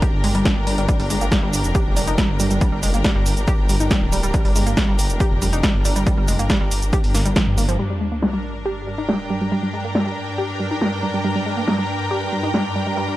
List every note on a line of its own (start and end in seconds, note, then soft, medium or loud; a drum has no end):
0.00 7.78 D4 medium
0.00 0.06 G4 loud
0.00 7.79 A#4 medium
0.00 7.79 G5 medium
0.00 7.79 A#5 medium
0.00 kick loud
0.00 closed hi-hat medium
0.13 0.22 G1 medium
0.24 0.33 G1 loud
0.24 0.31 G#3 loud
0.24 open hi-hat loud
0.35 0.44 G1 medium
0.35 0.45 G3 loud
0.35 closed hi-hat medium
0.45 0.56 D4 medium
0.45 kick loud
0.45 snare loud
0.45 closed hi-hat medium
0.56 0.65 G1 medium
0.67 0.76 G1 loud
0.67 0.74 G3 medium
0.67 open hi-hat loud
0.78 0.87 G1 medium
0.78 0.87 G3 medium
0.78 closed hi-hat medium
0.89 0.93 G3 loud
0.89 kick loud
0.89 closed hi-hat medium
0.89 shaker soft
1.00 1.09 G1 medium
1.00 1.06 G3 medium
1.00 open hi-hat medium
1.10 1.19 G1 loud
1.10 1.17 G#3 medium
1.10 open hi-hat loud
1.10 shaker medium
1.21 1.30 G1 medium
1.21 1.25 A#3 medium
1.21 closed hi-hat medium
1.21 shaker soft
1.32 1.39 G3 loud
1.32 kick loud
1.32 snare loud
1.32 closed hi-hat medium
1.32 shaker soft
1.43 1.52 G1 medium
1.43 1.50 G3 medium
1.53 1.63 G1 loud
1.53 open hi-hat loud
1.53 shaker medium
1.64 1.73 F1 medium
1.64 closed hi-hat medium
1.64 shaker soft
1.75 1.79 G4 loud
1.75 kick loud
1.75 closed hi-hat medium
1.75 shaker soft
1.86 1.95 F1 medium
1.96 2.06 F1 loud
1.96 2.04 G3 medium
1.96 open hi-hat loud
1.96 shaker medium
2.07 2.16 F1 medium
2.07 2.14 D#4 medium
2.07 closed hi-hat medium
2.07 shaker soft
2.18 2.25 G3 loud
2.18 kick loud
2.18 snare loud
2.18 closed hi-hat medium
2.18 shaker soft
2.29 2.38 G1 medium
2.40 2.49 G1 loud
2.40 2.47 G3 medium
2.40 open hi-hat loud
2.40 shaker medium
2.51 2.60 G1 medium
2.51 2.57 G3 medium
2.51 closed hi-hat medium
2.51 shaker soft
2.61 2.65 G3 loud
2.61 kick loud
2.61 closed hi-hat medium
2.61 shaker soft
2.72 2.81 G1 medium
2.72 2.79 G3 medium
2.83 2.92 F1 loud
2.83 2.90 G#3 medium
2.83 open hi-hat loud
2.83 shaker medium
2.94 3.03 G1 medium
2.94 2.98 A#3 medium
2.94 closed hi-hat medium
2.94 shaker soft
3.04 3.11 G3 loud
3.04 kick loud
3.04 snare loud
3.04 closed hi-hat medium
3.04 shaker soft
3.15 3.24 G1 medium
3.15 3.22 G3 medium
3.26 3.35 G1 loud
3.26 open hi-hat loud
3.26 shaker medium
3.37 3.46 G1 medium
3.37 closed hi-hat medium
3.37 shaker soft
3.48 3.52 G4 loud
3.48 kick loud
3.48 closed hi-hat medium
3.48 shaker soft
3.59 3.68 G1 medium
3.69 3.78 G1 loud
3.69 3.76 G3 medium
3.69 open hi-hat loud
3.69 shaker medium
3.80 3.89 G1 medium
3.80 3.87 D#4 medium
3.80 closed hi-hat medium
3.80 shaker soft
3.91 3.98 G3 loud
3.91 kick loud
3.91 snare loud
3.91 closed hi-hat medium
3.91 shaker soft
4.02 4.11 D1 medium
4.12 4.22 D1 loud
4.12 4.19 G3 medium
4.12 open hi-hat loud
4.12 shaker medium
4.23 4.32 D1 medium
4.23 4.30 G3 medium
4.23 closed hi-hat medium
4.23 shaker soft
4.34 4.38 G3 loud
4.34 kick loud
4.34 closed hi-hat medium
4.34 shaker soft
4.45 4.54 G1 medium
4.45 4.52 G3 medium
4.45 open hi-hat medium
4.55 4.65 G1 loud
4.55 4.63 G#3 medium
4.55 open hi-hat loud
4.55 shaker medium
4.67 4.75 G1 medium
4.67 4.71 A#3 medium
4.67 closed hi-hat medium
4.67 shaker soft
4.77 4.84 G3 loud
4.77 kick loud
4.77 snare loud
4.77 closed hi-hat medium
4.77 shaker soft
4.88 4.97 G1 medium
4.88 4.95 G3 medium
4.99 5.08 G1 loud
4.99 open hi-hat loud
4.99 shaker medium
5.10 5.19 F1 loud
5.10 closed hi-hat medium
5.10 shaker soft
5.20 5.24 G4 loud
5.20 kick loud
5.20 closed hi-hat medium
5.20 shaker soft
5.31 5.40 F1 medium
5.42 5.51 F1 loud
5.42 5.49 G3 medium
5.42 open hi-hat loud
5.42 shaker medium
5.53 5.62 F1 medium
5.53 5.60 D#4 medium
5.53 closed hi-hat medium
5.53 shaker soft
5.63 5.70 G3 loud
5.63 kick loud
5.63 snare loud
5.63 closed hi-hat medium
5.63 shaker soft
5.74 5.83 G1 medium
5.85 5.94 G1 loud
5.85 5.92 G3 medium
5.85 open hi-hat loud
5.85 shaker medium
5.96 6.05 G1 medium
5.96 6.03 G3 medium
5.96 closed hi-hat medium
5.96 shaker soft
6.07 6.11 G3 loud
6.07 kick loud
6.07 closed hi-hat medium
6.07 shaker soft
6.17 6.27 G1 medium
6.17 6.24 G3 medium
6.28 6.37 F1 loud
6.28 6.35 G#3 medium
6.28 open hi-hat loud
6.28 shaker medium
6.39 6.48 G1 medium
6.39 6.43 A#3 medium
6.39 closed hi-hat medium
6.39 shaker soft
6.50 6.57 G3 loud
6.50 kick loud
6.50 snare loud
6.50 closed hi-hat medium
6.50 shaker soft
6.61 6.70 G1 medium
6.61 6.67 G3 medium
6.71 6.81 G1 loud
6.71 open hi-hat loud
6.71 shaker medium
6.82 6.91 G1 medium
6.82 closed hi-hat medium
6.82 shaker soft
6.93 6.97 G4 loud
6.93 kick loud
6.93 closed hi-hat medium
6.93 shaker soft
7.04 7.13 G1 medium
7.04 open hi-hat medium
7.14 7.24 G1 loud
7.14 7.21 A#3 medium
7.14 snare medium
7.14 open hi-hat loud
7.14 shaker medium
7.25 7.34 G1 medium
7.25 7.36 G3 medium
7.25 closed hi-hat medium
7.25 shaker soft
7.36 7.43 F3 loud
7.36 kick loud
7.36 snare loud
7.36 closed hi-hat medium
7.36 shaker soft
7.47 7.56 G2 medium
7.58 7.67 G1 loud
7.58 7.65 A#3 medium
7.58 open hi-hat loud
7.58 shaker medium
7.69 7.78 G1 medium
7.69 7.75 F3 loud
7.69 closed hi-hat medium
7.69 shaker soft
7.79 13.17 G2 medium
7.79 7.83 G3 loud
7.79 13.17 D4 medium
7.79 sub drop medium
7.90 7.97 G3 medium
8.01 8.08 G#3 medium
8.12 8.16 A#3 medium
8.22 8.29 G3 loud
8.22 13.17 A#4 medium
8.22 snare loud
8.33 8.40 G3 medium
8.65 8.70 G4 loud
8.87 8.94 G3 medium
8.95 9.05 D#4 medium
8.95 13.17 A#5 medium
9.03 13.17 G5 medium
9.09 9.16 G3 loud
9.09 snare loud
9.30 9.37 G3 medium
9.41 9.48 G3 medium
9.52 9.56 G3 loud
9.63 9.70 G3 medium
9.73 9.80 G#3 medium
9.85 9.89 A#3 medium
9.95 10.02 G3 loud
9.95 snare loud
10.06 10.13 G3 medium
10.38 10.42 G4 loud
10.60 10.67 G3 medium
10.71 10.78 D#4 medium
10.81 10.88 G3 loud
10.81 snare loud
11.03 11.10 G3 medium
11.14 11.21 G3 medium
11.24 11.29 G3 loud
11.36 11.42 G3 medium
11.46 11.53 G#3 medium
11.57 11.61 A#3 medium
11.68 11.75 G3 loud
11.68 snare loud
11.79 11.85 G3 medium
12.11 12.15 G4 medium
12.32 12.39 G3 medium
12.43 12.50 D#4 medium
12.54 12.61 G3 loud
12.54 snare loud
12.76 12.83 G3 medium
12.87 12.93 G3 medium
12.97 13.01 G3 loud
13.08 13.15 G3 medium